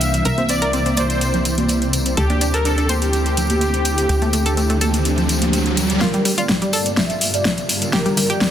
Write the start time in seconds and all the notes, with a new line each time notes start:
Already playing: C2 C3 E3 G3 A#3 D4 E5
0.01 closed hi-hat, tambourine
0.14 closed hi-hat, tambourine
0.25 C2 C4 A#4 E5, closed hi-hat, tambourine
0.38 C4, closed hi-hat, tambourine, high conga
0.49 C4 D5, closed hi-hat, tambourine
0.62 A#4, closed hi-hat, tambourine
0.73 C4, closed hi-hat, tambourine
0.86 C4, closed hi-hat, tambourine
0.97 C5 D5, closed hi-hat, tambourine, high conga
1.10 closed hi-hat, tambourine
1.21 closed hi-hat, tambourine
1.34 closed hi-hat, tambourine, low conga
1.45 closed hi-hat, tambourine
1.58 closed hi-hat, tambourine, high conga
1.68 closed hi-hat, tambourine
1.82 closed hi-hat, tambourine
1.93 closed hi-hat, tambourine
2.05 closed hi-hat, tambourine
2.17 D2 D3 A3 E4 G4 A4, closed hi-hat, tambourine, riser
2.30 D4, closed hi-hat, tambourine, high conga
2.41 D4, closed hi-hat, tambourine
2.54 A4 A#4, closed hi-hat
2.65 D4 A4, closed hi-hat, tambourine
2.78 D4, closed hi-hat, tambourine
2.89 G4 C5, closed hi-hat, tambourine, high conga
3.02 closed hi-hat, tambourine
3.13 closed hi-hat, tambourine
3.26 closed hi-hat, tambourine
3.37 closed hi-hat, tambourine, low conga
3.50 closed hi-hat, tambourine, high conga
3.61 closed hi-hat, tambourine
3.73 closed hi-hat, tambourine
3.85 closed hi-hat, tambourine
3.98 closed hi-hat, tambourine
4.09 D2 D4 G4, closed hi-hat, tambourine
4.22 A3, closed hi-hat, tambourine, high conga
4.33 A3, closed hi-hat, tambourine
4.46 A4, closed hi-hat, tambourine
4.57 A3, closed hi-hat, tambourine
4.70 A3, closed hi-hat, tambourine
4.81 A4, closed hi-hat, tambourine, high conga
4.93 closed hi-hat, tambourine
5.05 closed hi-hat, tambourine
5.18 closed hi-hat, tambourine, low conga
5.29 closed hi-hat, tambourine
5.42 closed hi-hat, tambourine, high conga
5.53 closed hi-hat, tambourine
5.66 closed hi-hat, tambourine
5.77 closed hi-hat, tambourine, low conga
5.90 closed hi-hat, tambourine
6.01 G2 G3 A#3 F4 A#4 A5, kick, snare, closed hi-hat, tambourine, riser
6.13 G3, closed hi-hat, tambourine
6.25 G3, open hi-hat, tambourine
6.38 F4 D5, closed hi-hat, tambourine
6.49 G3, kick, snare, closed hi-hat, tambourine
6.62 G3, closed hi-hat, tambourine
6.73 A4 D5, open hi-hat, tambourine
6.86 closed hi-hat, tambourine
6.97 E5, kick, snare, closed hi-hat, tambourine
7.10 closed hi-hat, tambourine
7.21 open hi-hat, tambourine
7.34 D5, closed hi-hat, tambourine
7.45 kick, snare, closed hi-hat, tambourine
7.57 closed hi-hat, tambourine
7.69 open hi-hat, tambourine
7.82 closed hi-hat, tambourine
7.93 G4 A#4, kick, snare, closed hi-hat, tambourine
8.06 G3, closed hi-hat, tambourine
8.17 G3, open hi-hat, tambourine
8.30 G4 D5, closed hi-hat
8.41 G3, kick, snare, closed hi-hat, tambourine